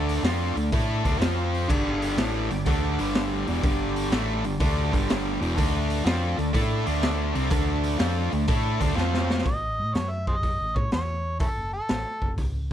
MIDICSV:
0, 0, Header, 1, 6, 480
1, 0, Start_track
1, 0, Tempo, 485830
1, 1676, Time_signature, 4, 2, 24, 8
1, 12575, End_track
2, 0, Start_track
2, 0, Title_t, "Harmonica"
2, 0, Program_c, 0, 22
2, 9346, Note_on_c, 0, 75, 87
2, 9823, Note_on_c, 0, 73, 91
2, 9838, Note_off_c, 0, 75, 0
2, 9981, Note_on_c, 0, 76, 85
2, 9996, Note_off_c, 0, 73, 0
2, 10142, Note_off_c, 0, 76, 0
2, 10158, Note_on_c, 0, 72, 62
2, 10158, Note_on_c, 0, 75, 89
2, 10229, Note_off_c, 0, 72, 0
2, 10632, Note_on_c, 0, 73, 86
2, 10647, Note_off_c, 0, 75, 0
2, 10789, Note_off_c, 0, 73, 0
2, 10794, Note_on_c, 0, 73, 87
2, 11239, Note_off_c, 0, 73, 0
2, 11265, Note_on_c, 0, 61, 56
2, 11265, Note_on_c, 0, 64, 56
2, 11265, Note_on_c, 0, 69, 80
2, 11325, Note_off_c, 0, 64, 0
2, 11341, Note_off_c, 0, 61, 0
2, 11569, Note_off_c, 0, 69, 0
2, 11592, Note_on_c, 0, 69, 81
2, 12193, Note_off_c, 0, 69, 0
2, 12575, End_track
3, 0, Start_track
3, 0, Title_t, "Tonewheel organ"
3, 0, Program_c, 1, 16
3, 0, Note_on_c, 1, 62, 69
3, 0, Note_on_c, 1, 69, 72
3, 0, Note_on_c, 1, 74, 73
3, 1164, Note_off_c, 1, 69, 0
3, 1165, Note_off_c, 1, 62, 0
3, 1167, Note_off_c, 1, 74, 0
3, 1192, Note_on_c, 1, 60, 66
3, 1193, Note_on_c, 1, 65, 61
3, 1193, Note_on_c, 1, 72, 66
3, 1659, Note_on_c, 1, 67, 70
3, 1659, Note_on_c, 1, 74, 71
3, 1665, Note_on_c, 1, 62, 77
3, 1669, Note_off_c, 1, 60, 0
3, 1669, Note_off_c, 1, 65, 0
3, 1669, Note_off_c, 1, 72, 0
3, 5459, Note_off_c, 1, 67, 0
3, 5459, Note_off_c, 1, 74, 0
3, 5462, Note_off_c, 1, 62, 0
3, 5493, Note_on_c, 1, 70, 72
3, 5493, Note_on_c, 1, 75, 67
3, 5499, Note_on_c, 1, 63, 60
3, 5649, Note_on_c, 1, 62, 73
3, 5651, Note_on_c, 1, 69, 73
3, 5654, Note_on_c, 1, 74, 70
3, 5659, Note_off_c, 1, 70, 0
3, 5659, Note_off_c, 1, 75, 0
3, 5662, Note_off_c, 1, 63, 0
3, 8820, Note_off_c, 1, 62, 0
3, 8821, Note_off_c, 1, 69, 0
3, 8822, Note_off_c, 1, 74, 0
3, 8860, Note_on_c, 1, 65, 61
3, 8862, Note_on_c, 1, 60, 61
3, 8864, Note_on_c, 1, 72, 70
3, 9336, Note_off_c, 1, 65, 0
3, 9337, Note_off_c, 1, 60, 0
3, 9338, Note_off_c, 1, 72, 0
3, 12575, End_track
4, 0, Start_track
4, 0, Title_t, "Distorted electric guitar"
4, 0, Program_c, 2, 30
4, 0, Note_on_c, 2, 50, 85
4, 0, Note_on_c, 2, 57, 90
4, 0, Note_on_c, 2, 62, 103
4, 227, Note_off_c, 2, 50, 0
4, 231, Note_on_c, 2, 53, 76
4, 232, Note_off_c, 2, 57, 0
4, 234, Note_off_c, 2, 62, 0
4, 237, Note_on_c, 2, 60, 87
4, 239, Note_on_c, 2, 65, 103
4, 545, Note_off_c, 2, 53, 0
4, 549, Note_on_c, 2, 50, 60
4, 550, Note_off_c, 2, 60, 0
4, 552, Note_off_c, 2, 65, 0
4, 554, Note_on_c, 2, 57, 69
4, 680, Note_off_c, 2, 50, 0
4, 682, Note_off_c, 2, 57, 0
4, 715, Note_on_c, 2, 57, 85
4, 716, Note_on_c, 2, 64, 102
4, 721, Note_on_c, 2, 69, 100
4, 1023, Note_off_c, 2, 57, 0
4, 1029, Note_on_c, 2, 50, 85
4, 1030, Note_off_c, 2, 64, 0
4, 1032, Note_off_c, 2, 69, 0
4, 1035, Note_on_c, 2, 57, 88
4, 1041, Note_on_c, 2, 62, 106
4, 1187, Note_off_c, 2, 50, 0
4, 1187, Note_on_c, 2, 53, 91
4, 1193, Note_off_c, 2, 57, 0
4, 1193, Note_on_c, 2, 60, 78
4, 1198, Note_off_c, 2, 62, 0
4, 1198, Note_on_c, 2, 65, 96
4, 1666, Note_off_c, 2, 53, 0
4, 1669, Note_off_c, 2, 60, 0
4, 1670, Note_on_c, 2, 43, 94
4, 1672, Note_off_c, 2, 65, 0
4, 1676, Note_on_c, 2, 50, 86
4, 1677, Note_on_c, 2, 55, 94
4, 2147, Note_off_c, 2, 43, 0
4, 2147, Note_off_c, 2, 50, 0
4, 2151, Note_off_c, 2, 55, 0
4, 2151, Note_on_c, 2, 45, 96
4, 2157, Note_on_c, 2, 52, 81
4, 2161, Note_on_c, 2, 57, 81
4, 2465, Note_off_c, 2, 45, 0
4, 2469, Note_off_c, 2, 52, 0
4, 2471, Note_off_c, 2, 57, 0
4, 2473, Note_on_c, 2, 43, 72
4, 2475, Note_on_c, 2, 50, 69
4, 2600, Note_off_c, 2, 43, 0
4, 2601, Note_off_c, 2, 50, 0
4, 2627, Note_on_c, 2, 50, 87
4, 2633, Note_on_c, 2, 57, 96
4, 2638, Note_on_c, 2, 62, 97
4, 2943, Note_off_c, 2, 50, 0
4, 2946, Note_off_c, 2, 57, 0
4, 2948, Note_off_c, 2, 62, 0
4, 2953, Note_on_c, 2, 43, 91
4, 2959, Note_on_c, 2, 50, 96
4, 2963, Note_on_c, 2, 55, 96
4, 3424, Note_off_c, 2, 43, 0
4, 3427, Note_off_c, 2, 50, 0
4, 3429, Note_off_c, 2, 55, 0
4, 3434, Note_on_c, 2, 40, 85
4, 3438, Note_on_c, 2, 47, 82
4, 3443, Note_on_c, 2, 52, 92
4, 3584, Note_off_c, 2, 40, 0
4, 3586, Note_off_c, 2, 47, 0
4, 3586, Note_off_c, 2, 52, 0
4, 3588, Note_on_c, 2, 43, 93
4, 3590, Note_on_c, 2, 50, 92
4, 3590, Note_on_c, 2, 55, 101
4, 4064, Note_off_c, 2, 43, 0
4, 4065, Note_off_c, 2, 50, 0
4, 4065, Note_off_c, 2, 55, 0
4, 4071, Note_on_c, 2, 45, 84
4, 4075, Note_on_c, 2, 52, 88
4, 4077, Note_on_c, 2, 57, 103
4, 4383, Note_off_c, 2, 45, 0
4, 4385, Note_off_c, 2, 52, 0
4, 4386, Note_off_c, 2, 57, 0
4, 4394, Note_on_c, 2, 43, 66
4, 4397, Note_on_c, 2, 50, 71
4, 4518, Note_off_c, 2, 43, 0
4, 4520, Note_off_c, 2, 50, 0
4, 4543, Note_on_c, 2, 50, 90
4, 4549, Note_on_c, 2, 57, 101
4, 4555, Note_on_c, 2, 62, 109
4, 4853, Note_off_c, 2, 50, 0
4, 4862, Note_off_c, 2, 57, 0
4, 4863, Note_on_c, 2, 43, 95
4, 4865, Note_off_c, 2, 62, 0
4, 4865, Note_on_c, 2, 50, 96
4, 4872, Note_on_c, 2, 55, 103
4, 5336, Note_off_c, 2, 43, 0
4, 5337, Note_off_c, 2, 50, 0
4, 5340, Note_off_c, 2, 55, 0
4, 5344, Note_on_c, 2, 40, 82
4, 5344, Note_on_c, 2, 47, 94
4, 5350, Note_on_c, 2, 52, 99
4, 5492, Note_off_c, 2, 47, 0
4, 5496, Note_on_c, 2, 50, 92
4, 5498, Note_off_c, 2, 40, 0
4, 5498, Note_off_c, 2, 52, 0
4, 5502, Note_on_c, 2, 57, 95
4, 5506, Note_on_c, 2, 62, 112
4, 5975, Note_off_c, 2, 50, 0
4, 5978, Note_off_c, 2, 57, 0
4, 5979, Note_on_c, 2, 53, 73
4, 5980, Note_off_c, 2, 62, 0
4, 5982, Note_on_c, 2, 60, 89
4, 5984, Note_on_c, 2, 65, 94
4, 6294, Note_off_c, 2, 53, 0
4, 6296, Note_off_c, 2, 60, 0
4, 6297, Note_off_c, 2, 65, 0
4, 6301, Note_on_c, 2, 50, 64
4, 6308, Note_on_c, 2, 57, 72
4, 6429, Note_off_c, 2, 50, 0
4, 6432, Note_off_c, 2, 57, 0
4, 6454, Note_on_c, 2, 57, 90
4, 6462, Note_on_c, 2, 64, 101
4, 6463, Note_on_c, 2, 69, 107
4, 6767, Note_off_c, 2, 57, 0
4, 6773, Note_on_c, 2, 50, 100
4, 6775, Note_off_c, 2, 64, 0
4, 6776, Note_off_c, 2, 69, 0
4, 6778, Note_on_c, 2, 57, 98
4, 6783, Note_on_c, 2, 62, 100
4, 7248, Note_off_c, 2, 50, 0
4, 7251, Note_off_c, 2, 57, 0
4, 7253, Note_off_c, 2, 62, 0
4, 7258, Note_on_c, 2, 48, 100
4, 7263, Note_on_c, 2, 55, 97
4, 7268, Note_on_c, 2, 60, 96
4, 7410, Note_off_c, 2, 48, 0
4, 7410, Note_off_c, 2, 55, 0
4, 7413, Note_on_c, 2, 57, 102
4, 7414, Note_on_c, 2, 50, 101
4, 7417, Note_off_c, 2, 60, 0
4, 7421, Note_on_c, 2, 62, 85
4, 7891, Note_off_c, 2, 50, 0
4, 7892, Note_off_c, 2, 57, 0
4, 7895, Note_on_c, 2, 53, 90
4, 7896, Note_off_c, 2, 62, 0
4, 7902, Note_on_c, 2, 60, 79
4, 7903, Note_on_c, 2, 65, 92
4, 8211, Note_off_c, 2, 53, 0
4, 8214, Note_off_c, 2, 60, 0
4, 8215, Note_off_c, 2, 65, 0
4, 8216, Note_on_c, 2, 50, 66
4, 8221, Note_on_c, 2, 57, 77
4, 8345, Note_off_c, 2, 50, 0
4, 8348, Note_off_c, 2, 57, 0
4, 8375, Note_on_c, 2, 57, 95
4, 8381, Note_on_c, 2, 64, 109
4, 8383, Note_on_c, 2, 69, 96
4, 8691, Note_off_c, 2, 57, 0
4, 8694, Note_off_c, 2, 64, 0
4, 8695, Note_off_c, 2, 69, 0
4, 8699, Note_on_c, 2, 50, 83
4, 8701, Note_on_c, 2, 57, 95
4, 8704, Note_on_c, 2, 62, 99
4, 8846, Note_off_c, 2, 50, 0
4, 8850, Note_off_c, 2, 57, 0
4, 8850, Note_on_c, 2, 53, 84
4, 8854, Note_on_c, 2, 60, 94
4, 8855, Note_off_c, 2, 62, 0
4, 8859, Note_on_c, 2, 65, 86
4, 9331, Note_off_c, 2, 53, 0
4, 9333, Note_off_c, 2, 60, 0
4, 9335, Note_off_c, 2, 65, 0
4, 12575, End_track
5, 0, Start_track
5, 0, Title_t, "Fingered electric bass"
5, 0, Program_c, 3, 33
5, 0, Note_on_c, 3, 38, 99
5, 202, Note_off_c, 3, 38, 0
5, 227, Note_on_c, 3, 41, 95
5, 532, Note_off_c, 3, 41, 0
5, 550, Note_on_c, 3, 38, 77
5, 700, Note_off_c, 3, 38, 0
5, 715, Note_on_c, 3, 45, 91
5, 1016, Note_off_c, 3, 45, 0
5, 1041, Note_on_c, 3, 38, 97
5, 1181, Note_off_c, 3, 38, 0
5, 1187, Note_on_c, 3, 41, 87
5, 1637, Note_off_c, 3, 41, 0
5, 1675, Note_on_c, 3, 31, 95
5, 2121, Note_off_c, 3, 31, 0
5, 2148, Note_on_c, 3, 33, 99
5, 2451, Note_off_c, 3, 33, 0
5, 2475, Note_on_c, 3, 31, 77
5, 2621, Note_off_c, 3, 31, 0
5, 2629, Note_on_c, 3, 38, 82
5, 2931, Note_off_c, 3, 38, 0
5, 2956, Note_on_c, 3, 31, 93
5, 3401, Note_off_c, 3, 31, 0
5, 3442, Note_on_c, 3, 28, 82
5, 3584, Note_off_c, 3, 28, 0
5, 3591, Note_on_c, 3, 31, 87
5, 4036, Note_off_c, 3, 31, 0
5, 4067, Note_on_c, 3, 33, 91
5, 4368, Note_off_c, 3, 33, 0
5, 4393, Note_on_c, 3, 31, 78
5, 4538, Note_off_c, 3, 31, 0
5, 4546, Note_on_c, 3, 38, 91
5, 4847, Note_off_c, 3, 38, 0
5, 4875, Note_on_c, 3, 31, 87
5, 5318, Note_off_c, 3, 31, 0
5, 5346, Note_on_c, 3, 28, 86
5, 5493, Note_off_c, 3, 28, 0
5, 5510, Note_on_c, 3, 38, 91
5, 5953, Note_off_c, 3, 38, 0
5, 5982, Note_on_c, 3, 41, 98
5, 6283, Note_off_c, 3, 41, 0
5, 6305, Note_on_c, 3, 38, 77
5, 6451, Note_off_c, 3, 38, 0
5, 6463, Note_on_c, 3, 45, 97
5, 6763, Note_off_c, 3, 45, 0
5, 6787, Note_on_c, 3, 38, 102
5, 7232, Note_off_c, 3, 38, 0
5, 7264, Note_on_c, 3, 36, 84
5, 7410, Note_off_c, 3, 36, 0
5, 7421, Note_on_c, 3, 38, 96
5, 7867, Note_off_c, 3, 38, 0
5, 7904, Note_on_c, 3, 41, 91
5, 8202, Note_off_c, 3, 41, 0
5, 8226, Note_on_c, 3, 38, 78
5, 8371, Note_off_c, 3, 38, 0
5, 8377, Note_on_c, 3, 45, 86
5, 8679, Note_off_c, 3, 45, 0
5, 8702, Note_on_c, 3, 38, 89
5, 8849, Note_off_c, 3, 38, 0
5, 8861, Note_on_c, 3, 41, 86
5, 9308, Note_off_c, 3, 41, 0
5, 9343, Note_on_c, 3, 33, 77
5, 9668, Note_on_c, 3, 45, 73
5, 9683, Note_off_c, 3, 33, 0
5, 9824, Note_on_c, 3, 42, 82
5, 9838, Note_off_c, 3, 45, 0
5, 10469, Note_on_c, 3, 33, 78
5, 10484, Note_off_c, 3, 42, 0
5, 10605, Note_off_c, 3, 33, 0
5, 10629, Note_on_c, 3, 45, 81
5, 10761, Note_off_c, 3, 45, 0
5, 10790, Note_on_c, 3, 40, 75
5, 11332, Note_off_c, 3, 40, 0
5, 11431, Note_on_c, 3, 30, 63
5, 11634, Note_off_c, 3, 30, 0
5, 11747, Note_on_c, 3, 33, 79
5, 11885, Note_off_c, 3, 33, 0
5, 12073, Note_on_c, 3, 30, 77
5, 12207, Note_off_c, 3, 30, 0
5, 12229, Note_on_c, 3, 37, 85
5, 12571, Note_off_c, 3, 37, 0
5, 12575, End_track
6, 0, Start_track
6, 0, Title_t, "Drums"
6, 89, Note_on_c, 9, 46, 61
6, 187, Note_off_c, 9, 46, 0
6, 239, Note_on_c, 9, 46, 77
6, 245, Note_on_c, 9, 38, 104
6, 337, Note_off_c, 9, 46, 0
6, 343, Note_off_c, 9, 38, 0
6, 564, Note_on_c, 9, 46, 61
6, 663, Note_off_c, 9, 46, 0
6, 713, Note_on_c, 9, 46, 74
6, 716, Note_on_c, 9, 36, 111
6, 812, Note_off_c, 9, 46, 0
6, 815, Note_off_c, 9, 36, 0
6, 1039, Note_on_c, 9, 36, 80
6, 1039, Note_on_c, 9, 46, 53
6, 1137, Note_off_c, 9, 46, 0
6, 1138, Note_off_c, 9, 36, 0
6, 1198, Note_on_c, 9, 46, 66
6, 1204, Note_on_c, 9, 38, 105
6, 1297, Note_off_c, 9, 46, 0
6, 1303, Note_off_c, 9, 38, 0
6, 1527, Note_on_c, 9, 46, 57
6, 1626, Note_off_c, 9, 46, 0
6, 1675, Note_on_c, 9, 36, 104
6, 1679, Note_on_c, 9, 49, 88
6, 1774, Note_off_c, 9, 36, 0
6, 1778, Note_off_c, 9, 49, 0
6, 1998, Note_on_c, 9, 46, 60
6, 2096, Note_off_c, 9, 46, 0
6, 2151, Note_on_c, 9, 46, 75
6, 2157, Note_on_c, 9, 38, 104
6, 2250, Note_off_c, 9, 46, 0
6, 2256, Note_off_c, 9, 38, 0
6, 2479, Note_on_c, 9, 46, 61
6, 2578, Note_off_c, 9, 46, 0
6, 2627, Note_on_c, 9, 46, 71
6, 2632, Note_on_c, 9, 36, 104
6, 2725, Note_off_c, 9, 46, 0
6, 2731, Note_off_c, 9, 36, 0
6, 2953, Note_on_c, 9, 46, 59
6, 3052, Note_off_c, 9, 46, 0
6, 3111, Note_on_c, 9, 46, 73
6, 3117, Note_on_c, 9, 38, 97
6, 3210, Note_off_c, 9, 46, 0
6, 3215, Note_off_c, 9, 38, 0
6, 3433, Note_on_c, 9, 46, 61
6, 3532, Note_off_c, 9, 46, 0
6, 3589, Note_on_c, 9, 46, 76
6, 3592, Note_on_c, 9, 36, 114
6, 3687, Note_off_c, 9, 46, 0
6, 3690, Note_off_c, 9, 36, 0
6, 3914, Note_on_c, 9, 46, 69
6, 4013, Note_off_c, 9, 46, 0
6, 4068, Note_on_c, 9, 46, 74
6, 4074, Note_on_c, 9, 38, 103
6, 4167, Note_off_c, 9, 46, 0
6, 4173, Note_off_c, 9, 38, 0
6, 4392, Note_on_c, 9, 46, 60
6, 4491, Note_off_c, 9, 46, 0
6, 4545, Note_on_c, 9, 46, 81
6, 4550, Note_on_c, 9, 36, 110
6, 4643, Note_off_c, 9, 46, 0
6, 4648, Note_off_c, 9, 36, 0
6, 4874, Note_on_c, 9, 36, 78
6, 4879, Note_on_c, 9, 46, 55
6, 4973, Note_off_c, 9, 36, 0
6, 4978, Note_off_c, 9, 46, 0
6, 5037, Note_on_c, 9, 46, 76
6, 5043, Note_on_c, 9, 38, 110
6, 5136, Note_off_c, 9, 46, 0
6, 5142, Note_off_c, 9, 38, 0
6, 5359, Note_on_c, 9, 46, 58
6, 5458, Note_off_c, 9, 46, 0
6, 5511, Note_on_c, 9, 36, 100
6, 5515, Note_on_c, 9, 46, 83
6, 5610, Note_off_c, 9, 36, 0
6, 5614, Note_off_c, 9, 46, 0
6, 5831, Note_on_c, 9, 46, 58
6, 5930, Note_off_c, 9, 46, 0
6, 5991, Note_on_c, 9, 46, 75
6, 5997, Note_on_c, 9, 38, 108
6, 6090, Note_off_c, 9, 46, 0
6, 6095, Note_off_c, 9, 38, 0
6, 6313, Note_on_c, 9, 46, 60
6, 6411, Note_off_c, 9, 46, 0
6, 6466, Note_on_c, 9, 36, 99
6, 6468, Note_on_c, 9, 46, 77
6, 6565, Note_off_c, 9, 36, 0
6, 6567, Note_off_c, 9, 46, 0
6, 6783, Note_on_c, 9, 46, 57
6, 6882, Note_off_c, 9, 46, 0
6, 6941, Note_on_c, 9, 46, 72
6, 6947, Note_on_c, 9, 38, 106
6, 7040, Note_off_c, 9, 46, 0
6, 7046, Note_off_c, 9, 38, 0
6, 7266, Note_on_c, 9, 46, 62
6, 7364, Note_off_c, 9, 46, 0
6, 7415, Note_on_c, 9, 46, 81
6, 7421, Note_on_c, 9, 36, 115
6, 7514, Note_off_c, 9, 46, 0
6, 7520, Note_off_c, 9, 36, 0
6, 7742, Note_on_c, 9, 46, 61
6, 7841, Note_off_c, 9, 46, 0
6, 7897, Note_on_c, 9, 46, 80
6, 7903, Note_on_c, 9, 38, 104
6, 7996, Note_off_c, 9, 46, 0
6, 8002, Note_off_c, 9, 38, 0
6, 8224, Note_on_c, 9, 46, 61
6, 8323, Note_off_c, 9, 46, 0
6, 8376, Note_on_c, 9, 46, 80
6, 8381, Note_on_c, 9, 36, 109
6, 8474, Note_off_c, 9, 46, 0
6, 8480, Note_off_c, 9, 36, 0
6, 8700, Note_on_c, 9, 46, 60
6, 8703, Note_on_c, 9, 36, 75
6, 8799, Note_off_c, 9, 46, 0
6, 8802, Note_off_c, 9, 36, 0
6, 8867, Note_on_c, 9, 38, 58
6, 8966, Note_off_c, 9, 38, 0
6, 9030, Note_on_c, 9, 38, 73
6, 9129, Note_off_c, 9, 38, 0
6, 9192, Note_on_c, 9, 38, 96
6, 9271, Note_off_c, 9, 38, 0
6, 9271, Note_on_c, 9, 38, 79
6, 9344, Note_on_c, 9, 36, 94
6, 9344, Note_on_c, 9, 46, 46
6, 9370, Note_off_c, 9, 38, 0
6, 9442, Note_off_c, 9, 36, 0
6, 9443, Note_off_c, 9, 46, 0
6, 9829, Note_on_c, 9, 46, 47
6, 9835, Note_on_c, 9, 38, 96
6, 9928, Note_off_c, 9, 46, 0
6, 9934, Note_off_c, 9, 38, 0
6, 10150, Note_on_c, 9, 36, 82
6, 10249, Note_off_c, 9, 36, 0
6, 10307, Note_on_c, 9, 36, 70
6, 10312, Note_on_c, 9, 46, 44
6, 10406, Note_off_c, 9, 36, 0
6, 10411, Note_off_c, 9, 46, 0
6, 10630, Note_on_c, 9, 36, 83
6, 10729, Note_off_c, 9, 36, 0
6, 10785, Note_on_c, 9, 46, 44
6, 10791, Note_on_c, 9, 38, 97
6, 10884, Note_off_c, 9, 46, 0
6, 10890, Note_off_c, 9, 38, 0
6, 11260, Note_on_c, 9, 46, 52
6, 11266, Note_on_c, 9, 36, 99
6, 11359, Note_off_c, 9, 46, 0
6, 11365, Note_off_c, 9, 36, 0
6, 11744, Note_on_c, 9, 46, 46
6, 11750, Note_on_c, 9, 38, 103
6, 11843, Note_off_c, 9, 46, 0
6, 11849, Note_off_c, 9, 38, 0
6, 12071, Note_on_c, 9, 36, 69
6, 12170, Note_off_c, 9, 36, 0
6, 12229, Note_on_c, 9, 46, 42
6, 12230, Note_on_c, 9, 36, 70
6, 12328, Note_off_c, 9, 46, 0
6, 12329, Note_off_c, 9, 36, 0
6, 12575, End_track
0, 0, End_of_file